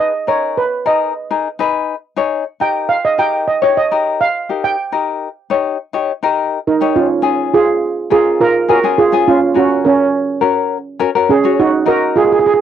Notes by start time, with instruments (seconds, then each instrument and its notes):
Already playing: ukulele D#4 G#4 B4
0.00 steel pan D#5
0.27 ukulele D#4 G#4 A#4, steel pan C#5
0.57 steel pan B4
0.85 ukulele D#4 G#4 A#4, steel pan D#5
1.30 ukulele D#4 G#4 A#4
1.59 ukulele D#4 G#4 B4
2.16 ukulele D#4 G#4 C#5
2.60 ukulele D#4 G4 A#4, steel pan G5
2.89 steel pan F5
3.05 steel pan D#5
3.18 ukulele D#4 G4 A#4, steel pan G5
3.48 steel pan D#5
3.62 ukulele D#4 G4 C#5, steel pan C#5
3.77 steel pan D#5
3.91 ukulele D#4 G4 A#4
4.21 steel pan F5
4.49 ukulele D#4 G4 A#4
4.64 steel pan G5
4.92 ukulele D#4 G4 A#4
5.50 ukulele D#4 G4 C#5
5.93 ukulele D#4 G4 C#5
6.22 ukulele D#4 G4 A#4
6.67 steel pan D#4 A#4
6.81 ukulele D#4 G4 C#5
6.96 steel pan C#4 F4
7.22 ukulele C#4 F4 G#4
7.54 steel pan F4 G#4
8.10 ukulele C#4 F4 A#4, steel pan F4 G#4
8.41 steel pan F4 A#4
8.69 ukulele C#4 F4 G#4, steel pan F#4 A#4
8.84 ukulele C#4 F4 G#4
8.98 steel pan F4 G#4
9.12 ukulele C#4 F4 G#4
9.28 steel pan C#4 F4
9.54 ukulele C#4 F#4 A#4, steel pan C#4 F#4
9.85 steel pan C#4 A#4
10.41 ukulele C#4 F#4 A#4
10.99 ukulele C#4 F#4 A#4
11.15 ukulele C#4 F#4 A#4
11.29 steel pan C#4 G#4
11.44 ukulele C#4 F#4 C#5
11.59 steel pan D#4 F#4
11.86 ukulele D#4 F#4 A#4, steel pan F#4 A#4
12.16 steel pan F4 G#4
12.25 steel pan G#4
12.32 steel pan G#4
12.39 steel pan G#4
12.46 steel pan G#4
12.54 steel pan G#4